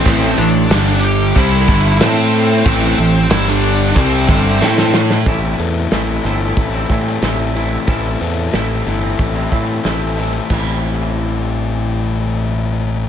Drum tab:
CC |x-x-x-x-x-x-x-x-|x-x-x-x-x-x-----|----------------|----------------|
HH |----------------|----------------|o-o-o-o-o-o-o-o-|o-o-o-o-o-o-o-o-|
SD |-o--o-------o---|-o--oo------oooo|----o-o-----o---|----o-------o---|
BD |o-------o-o-----|o-------o-o-----|o-------o-o-----|o-------o-o-----|

CC |x---------------|
HH |----------------|
SD |----------------|
BD |o---------------|